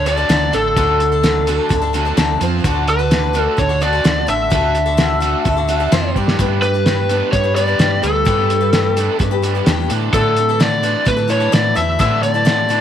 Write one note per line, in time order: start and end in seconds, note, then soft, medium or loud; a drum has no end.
0.00 0.23 D2 medium
0.05 0.28 D3 medium
0.05 0.18 F#3 soft
0.05 0.18 A3 soft
0.05 0.17 D4 medium
0.05 0.28 F#4 medium
0.05 0.16 A4 medium
0.05 0.55 D5 medium
0.05 closed hi-hat medium
0.17 0.29 A3 soft
0.17 0.29 D4 soft
0.17 0.29 A4 soft
0.29 0.50 D2 medium
0.29 0.53 D3 medium
0.29 0.51 F#3 medium
0.29 0.52 A3 medium
0.29 0.53 D4 medium
0.29 0.53 A4 medium
0.29 snare loud
0.29 closed hi-hat medium
0.52 0.73 A1 medium
0.52 0.74 D3 medium
0.52 0.76 F#3 soft
0.52 0.76 A3 medium
0.52 0.76 D4 medium
0.52 2.38 A4 medium
0.52 0.76 A4 medium
0.52 closed hi-hat medium
0.76 1.58 D2 medium
0.76 1.12 D3 medium
0.76 1.12 F#3 medium
0.76 1.12 A3 medium
0.76 1.11 D4 medium
0.76 0.99 F#4 medium
0.76 1.11 A4 medium
0.76 kick loud
0.76 closed hi-hat medium
1.00 1.21 D3 medium
1.00 1.21 D4 medium
1.00 closed hi-hat medium
1.12 1.23 A3 soft
1.12 1.23 D4 soft
1.12 1.23 A4 medium
1.23 1.47 D3 medium
1.23 1.46 F#3 medium
1.23 1.47 A3 medium
1.23 1.47 D4 medium
1.23 1.47 A4 medium
1.23 snare medium
1.23 closed hi-hat medium
1.46 1.69 D3 medium
1.46 1.68 F#3 medium
1.46 1.69 A3 medium
1.46 1.69 D4 medium
1.46 1.69 F#4 medium
1.46 1.70 A4 medium
1.46 closed hi-hat medium
1.69 2.12 D2 medium
1.69 1.92 D3 medium
1.69 1.82 F#3 medium
1.69 1.82 A3 medium
1.69 1.81 D4 medium
1.69 1.80 A4 medium
1.69 kick medium
1.69 closed hi-hat medium
1.81 1.93 A3 soft
1.81 1.93 D4 medium
1.81 1.94 A4 medium
1.93 2.16 D3 medium
1.93 2.05 F#3 medium
1.93 2.06 A3 medium
1.93 2.05 D4 medium
1.93 2.17 F#4 medium
1.93 2.04 A4 medium
1.93 closed hi-hat medium
2.05 2.17 A3 soft
2.05 2.17 D4 medium
2.05 2.17 A4 medium
2.17 2.38 D2 medium
2.17 2.40 D3 medium
2.17 2.41 F#3 medium
2.17 2.41 A3 medium
2.17 2.41 D4 medium
2.17 2.41 A4 medium
2.17 snare medium
2.17 closed hi-hat medium
2.40 2.61 F2 medium
2.40 2.64 F3 medium
2.40 2.65 C4 medium
2.40 2.65 F4 medium
2.40 2.65 C5 medium
2.40 closed hi-hat medium
2.64 3.46 D2 medium
2.64 2.99 D3 medium
2.64 3.00 A3 medium
2.64 2.99 D4 medium
2.64 2.99 F#4 medium
2.64 2.98 A4 medium
2.64 kick loud
2.64 closed hi-hat medium
2.87 3.09 D3 medium
2.87 3.09 D4 medium
2.87 3.43 B4 medium
2.87 closed hi-hat soft
2.99 3.11 D4 soft
2.99 3.11 F#4 soft
2.99 3.11 A4 medium
3.11 3.35 D3 medium
3.11 3.32 A3 medium
3.11 3.33 D4 medium
3.11 3.33 F#4 medium
3.11 3.34 A4 medium
3.11 snare medium
3.11 closed hi-hat medium
3.33 3.57 D3 medium
3.33 3.56 A3 medium
3.33 3.56 D4 medium
3.33 3.57 F#4 medium
3.33 3.58 A4 medium
3.33 closed hi-hat medium
3.43 3.61 A4 medium
3.57 3.99 D2 medium
3.57 3.80 D3 medium
3.57 3.69 A3 soft
3.57 3.69 D4 medium
3.57 3.68 F#4 soft
3.57 3.68 A4 soft
3.57 3.81 C#5 medium
3.57 kick medium
3.57 closed hi-hat medium
3.69 3.81 D4 soft
3.69 3.81 F#4 soft
3.69 3.81 A4 soft
3.81 4.03 D3 medium
3.81 3.93 A3 medium
3.81 3.93 D4 soft
3.81 3.93 F#4 medium
3.81 3.91 A4 medium
3.81 4.26 D5 medium
3.81 closed hi-hat medium
3.93 4.04 D4 soft
3.93 4.04 F#4 soft
3.93 4.04 A4 soft
4.04 4.25 D2 medium
4.04 4.28 D3 medium
4.04 4.26 A3 medium
4.04 4.26 D4 medium
4.04 4.27 F#4 medium
4.04 4.28 A4 medium
4.04 snare loud
4.04 closed hi-hat medium
4.27 4.49 A1 medium
4.27 4.49 D3 medium
4.27 4.49 A3 medium
4.27 4.50 D4 soft
4.27 4.50 F#4 soft
4.27 4.51 A4 medium
4.27 6.12 E5 medium
4.27 closed hi-hat medium
4.50 5.34 D2 medium
4.50 4.86 D3 medium
4.50 4.86 A3 medium
4.50 4.86 D4 medium
4.50 4.86 F#4 medium
4.50 4.85 A4 medium
4.50 kick loud
4.50 closed hi-hat medium
4.75 4.97 D3 medium
4.75 4.97 D4 medium
4.75 closed hi-hat medium
4.86 4.97 D4 soft
4.86 4.97 F#4 medium
4.86 4.97 A4 medium
4.97 5.21 D3 medium
4.97 5.19 A3 medium
4.97 5.20 D4 medium
4.97 5.20 F#4 medium
4.97 5.21 A4 medium
4.97 snare medium
4.97 closed hi-hat medium
5.20 5.45 D3 medium
5.20 5.44 A3 medium
5.20 5.45 D4 medium
5.20 5.45 F#4 medium
5.20 5.46 A4 medium
5.20 closed hi-hat medium
5.45 5.86 D2 medium
5.45 5.67 D3 medium
5.45 5.57 A3 medium
5.45 5.57 D4 medium
5.45 5.56 F#4 medium
5.45 5.55 A4 medium
5.45 kick medium
5.45 closed hi-hat medium
5.57 5.67 D4 soft
5.57 5.68 F#4 soft
5.57 5.69 A4 medium
5.68 5.91 D3 medium
5.68 5.80 A3 medium
5.68 5.80 D4 medium
5.68 5.79 F#4 medium
5.68 5.79 A4 medium
5.68 closed hi-hat medium
5.80 5.91 D4 soft
5.80 5.92 F#4 soft
5.80 5.92 A4 medium
5.92 6.13 F2 medium
5.92 6.15 F3 medium
5.92 6.16 C4 medium
5.92 6.16 F4 medium
5.92 6.16 C5 medium
5.92 snare loud
5.92 closed hi-hat medium
6.16 6.36 G2 medium
6.16 6.38 G3 medium
6.16 6.38 D4 medium
6.16 6.39 G4 medium
6.16 6.40 D5 medium
6.16 kick soft
6.28 snare medium
6.39 7.21 G2 medium
6.39 6.74 G3 medium
6.39 6.75 A3 medium
6.39 6.62 B3 medium
6.39 6.75 D4 medium
6.39 6.74 G4 medium
6.39 6.73 B4 medium
6.39 kick loud
6.39 closed hi-hat medium
6.62 6.83 G3 medium
6.62 6.84 D4 medium
6.62 7.29 B4 medium
6.62 closed hi-hat soft
6.74 6.86 D4 soft
6.74 6.86 G4 soft
6.74 6.86 B4 medium
6.86 7.10 G3 medium
6.86 7.09 A3 medium
6.86 7.09 D4 medium
6.86 7.10 G4 medium
6.86 7.10 B4 medium
6.86 snare medium
6.86 closed hi-hat medium
7.09 7.31 G3 medium
7.09 7.31 A3 soft
7.09 7.32 B3 medium
7.09 7.32 D4 medium
7.09 7.33 G4 medium
7.09 7.33 B4 medium
7.09 closed hi-hat medium
7.32 7.74 G2 medium
7.32 7.54 G3 medium
7.32 7.44 A3 soft
7.32 7.44 D4 soft
7.32 7.43 G4 medium
7.32 7.42 B4 medium
7.32 7.54 C#5 medium
7.32 kick medium
7.32 closed hi-hat medium
7.44 7.56 D4 soft
7.44 7.56 G4 soft
7.44 7.56 B4 medium
7.56 7.78 G3 medium
7.56 7.68 A3 soft
7.56 7.79 B3 medium
7.56 7.68 D4 medium
7.56 7.67 G4 medium
7.56 7.66 B4 medium
7.56 8.04 D5 medium
7.56 closed hi-hat medium
7.67 7.79 D4 soft
7.67 7.79 G4 soft
7.67 7.79 B4 medium
7.79 8.00 G2 medium
7.79 8.03 G3 medium
7.79 8.01 A3 medium
7.79 8.02 D4 medium
7.79 8.03 G4 medium
7.79 8.03 B4 medium
7.79 snare loud
7.79 closed hi-hat medium
8.02 8.23 D2 medium
8.02 8.24 G3 medium
8.02 8.24 A3 medium
8.02 8.24 D4 medium
8.02 8.25 G4 medium
8.02 9.23 A4 medium
8.02 8.26 B4 medium
8.02 closed hi-hat medium
8.25 9.08 G2 medium
8.25 8.61 G3 medium
8.25 8.61 A3 medium
8.25 8.49 B3 medium
8.25 8.61 D4 medium
8.25 8.60 G4 medium
8.25 8.59 B4 medium
8.25 kick medium
8.25 closed hi-hat medium
8.49 8.71 G3 medium
8.49 8.71 D4 medium
8.49 closed hi-hat medium
8.61 8.72 D4 soft
8.61 8.73 G4 soft
8.61 8.73 B4 medium
8.73 8.96 G3 medium
8.73 8.95 A3 medium
8.73 8.96 D4 medium
8.73 8.96 G4 medium
8.73 8.97 B4 medium
8.73 snare medium
8.73 closed hi-hat medium
8.96 9.18 G3 medium
8.96 9.18 A3 medium
8.96 9.19 B3 medium
8.96 9.18 D4 medium
8.96 9.19 G4 medium
8.96 9.20 B4 medium
8.96 closed hi-hat medium
9.19 9.61 G2 medium
9.19 9.41 G3 medium
9.19 9.31 A3 medium
9.19 9.31 D4 medium
9.19 9.31 G4 medium
9.19 9.30 B4 medium
9.19 kick medium
9.19 closed hi-hat medium
9.23 9.86 G4 medium
9.31 9.42 D4 soft
9.31 9.43 G4 medium
9.31 9.43 B4 medium
9.42 9.65 G3 medium
9.42 9.54 A3 medium
9.42 9.65 B3 medium
9.42 9.55 D4 medium
9.42 9.55 G4 medium
9.42 9.54 B4 medium
9.42 closed hi-hat medium
9.55 9.66 D4 soft
9.55 9.67 G4 medium
9.55 9.66 B4 medium
9.66 9.87 E2 medium
9.66 9.90 G3 medium
9.66 9.89 A3 medium
9.66 9.90 D4 medium
9.66 9.91 G4 medium
9.66 9.91 B4 medium
9.66 snare loud
9.66 closed hi-hat medium
9.89 10.11 A2 medium
9.89 10.12 D3 medium
9.89 10.13 E3 medium
9.89 10.13 A3 medium
9.89 10.12 D4 medium
9.89 10.13 E4 medium
9.89 10.14 A4 medium
9.89 closed hi-hat medium
10.13 10.95 A2 medium
10.13 10.48 A2 medium
10.13 10.48 D3 medium
10.13 10.49 E3 medium
10.13 10.49 A3 medium
10.13 10.36 D4 medium
10.13 10.48 E4 medium
10.13 10.62 A4 medium
10.13 10.48 A4 medium
10.13 kick loud
10.13 closed hi-hat medium
10.36 10.57 A2 medium
10.36 10.57 D3 medium
10.36 closed hi-hat medium
10.49 10.59 E3 soft
10.49 10.59 A3 soft
10.49 10.59 E4 soft
10.49 10.59 A4 medium
10.60 10.83 A2 medium
10.60 10.83 D3 medium
10.60 10.82 E3 medium
10.60 10.82 A3 medium
10.60 10.83 E4 medium
10.60 10.83 A4 medium
10.60 11.08 D5 medium
10.60 snare medium
10.60 closed hi-hat medium
10.82 11.05 A2 medium
10.82 11.05 D3 medium
10.82 11.04 E3 medium
10.82 11.04 A3 medium
10.82 11.05 D4 medium
10.82 11.05 E4 medium
10.82 11.06 A4 medium
10.82 closed hi-hat medium
11.05 11.27 A2 medium
11.05 11.47 A2 medium
11.05 11.27 D3 medium
11.05 11.17 E3 medium
11.05 11.17 A3 medium
11.05 11.16 E4 medium
11.05 11.15 A4 medium
11.05 11.31 B4 medium
11.05 kick medium
11.05 closed hi-hat medium
11.16 11.26 E3 soft
11.16 11.27 A3 soft
11.16 11.28 E4 soft
11.16 11.28 A4 medium
11.28 11.51 A2 medium
11.28 11.52 D3 medium
11.28 11.40 E3 medium
11.28 11.40 A3 medium
11.28 11.52 D4 medium
11.28 11.39 E4 medium
11.28 11.39 A4 medium
11.28 11.52 C#5 medium
11.28 closed hi-hat soft
11.40 11.51 E3 soft
11.40 11.52 A3 soft
11.40 11.52 E4 soft
11.40 11.52 A4 soft
11.52 11.76 A2 medium
11.52 11.74 A2 medium
11.52 11.76 D3 medium
11.52 11.74 E3 medium
11.52 11.74 A3 medium
11.52 11.75 E4 medium
11.52 11.75 A4 medium
11.52 11.75 D5 medium
11.52 snare loud
11.52 closed hi-hat medium
11.75 11.97 E2 medium
11.75 11.98 A2 medium
11.75 11.98 D3 medium
11.75 11.98 E3 medium
11.75 11.98 A3 medium
11.75 11.99 E4 medium
11.75 11.99 A4 medium
11.75 11.99 E5 medium
11.75 closed hi-hat medium
11.99 12.34 A2 medium
11.99 12.81 A2 medium
11.99 12.35 D3 medium
11.99 12.35 E3 medium
11.99 12.34 A3 medium
11.99 12.22 D4 medium
11.99 12.34 E4 medium
11.99 12.33 A4 medium
11.99 12.22 E5 medium
11.99 kick medium
11.99 closed hi-hat medium
12.23 12.44 A2 medium
12.23 12.44 D3 medium
12.23 12.81 D5 medium
12.23 closed hi-hat medium
12.34 12.44 E3 soft
12.34 12.45 A3 soft
12.34 12.45 E4 soft
12.34 12.45 A4 medium
12.45 12.69 A2 medium
12.45 12.69 D3 medium
12.45 12.67 E3 medium
12.45 12.68 A3 medium
12.45 12.69 E4 medium
12.45 12.70 A4 medium
12.45 snare medium
12.45 closed hi-hat medium
12.69 12.81 A2 medium
12.69 12.81 D3 medium
12.69 12.81 E3 medium
12.69 12.81 A3 medium
12.69 12.81 D4 medium
12.69 12.81 E4 medium
12.69 12.81 A4 medium
12.69 closed hi-hat medium